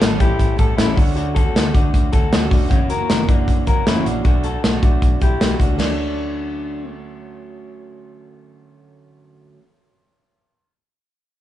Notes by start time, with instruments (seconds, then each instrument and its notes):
Already playing: clean electric guitar F#4 A4
0.01 fingered electric bass A1, snare, closed hi-hat
0.08 steel-string acoustic guitar A2 E3 G3 A3 C#4 A4
0.20 fingered electric bass A1, clean electric guitar E4 G4, kick, closed hi-hat
0.39 fingered electric bass A1, kick, closed hi-hat
0.57 fingered electric bass A1, steel-string acoustic guitar G3 A3 C#4 A4, clean electric guitar F#4 A4, kick, closed hi-hat
0.77 fingered electric bass A1, clean electric guitar C#4 E4, snare, closed hi-hat
0.87 steel-string acoustic guitar A2 E3 G3 A3 C#4 A4
0.95 fingered electric bass D2, steel-string acoustic guitar D3 F#3 A3 C#4 F#4, clean electric guitar D4 F#4, kick, open hi-hat
1.16 clean electric guitar D4 F#4, closed hi-hat
1.35 clean electric guitar F#4 A4, kick, closed hi-hat
1.44 steel-string acoustic guitar A3 C#4 F#4
1.55 fingered electric bass D2, snare, closed hi-hat
1.64 steel-string acoustic guitar D3 F#3 A3 C#4 F#4
1.74 fingered electric bass D2, clean electric guitar D4 F#4, kick, closed hi-hat
1.94 fingered electric bass D2, kick, closed hi-hat
2.12 fingered electric bass D2, steel-string acoustic guitar F#3 A3 C#4 F#4, clean electric guitar F#4 A4, kick, closed hi-hat
2.33 fingered electric bass D2, snare, closed hi-hat
2.41 steel-string acoustic guitar D3 F#3 A3 C#4 F#4
2.51 fingered electric bass E1, clean electric guitar D4 F#4, kick, open hi-hat
2.68 fingered electric bass F#1, steel-string acoustic guitar E3 A#3 C#4 F#4, clean electric guitar C#4 F#4, kick, closed hi-hat
2.90 clean electric guitar F#4 A#4, closed hi-hat
2.98 steel-string acoustic guitar E3 A#3 C#4 F#4
3.10 fingered electric bass F#1, snare, closed hi-hat
3.17 steel-string acoustic guitar F#2 E3 A#3 C#4 F#4
3.28 fingered electric bass F#1, clean electric guitar D4 F#4, kick, closed hi-hat
3.48 fingered electric bass F#1, kick, closed hi-hat
3.65 fingered electric bass F#1, steel-string acoustic guitar E3 A#3 C#4 F#4, clean electric guitar F#4 A#4, kick, closed hi-hat
3.87 fingered electric bass F#1, clean electric guitar C#4 E4, snare, closed hi-hat
3.94 steel-string acoustic guitar F#2 C#3 E3 A#3 C#4 F#4
4.05 fingered electric bass A#1, clean electric guitar D4 F#4, closed hi-hat
4.23 fingered electric bass B1, steel-string acoustic guitar F#3 A3 D4 F#4, clean electric guitar D4 F#4, kick, closed hi-hat
4.44 clean electric guitar F#4 A4, closed hi-hat
4.52 steel-string acoustic guitar A3 D4 F#4
4.64 fingered electric bass B1, snare, closed hi-hat
4.72 steel-string acoustic guitar B2 F#3 A3 D4 F#4
4.83 fingered electric bass B1, clean electric guitar D4 F#4, kick, closed hi-hat
5.02 fingered electric bass B1, kick, closed hi-hat
5.19 fingered electric bass B1, steel-string acoustic guitar F#3 A3 D4 F#4, clean electric guitar G4, kick, closed hi-hat
5.23 clean electric guitar E4
5.41 fingered electric bass B1, snare, closed hi-hat
5.49 steel-string acoustic guitar B2 F#3 A3 D4 F#4
5.59 fingered electric bass C#2, clean electric guitar D4 F#4, kick, closed hi-hat
5.75 fingered electric bass D2, steel-string acoustic guitar D3 F#3, clean electric guitar D4
5.80 steel-string acoustic guitar A3 C#4, snare, crash
5.86 steel-string acoustic guitar F#4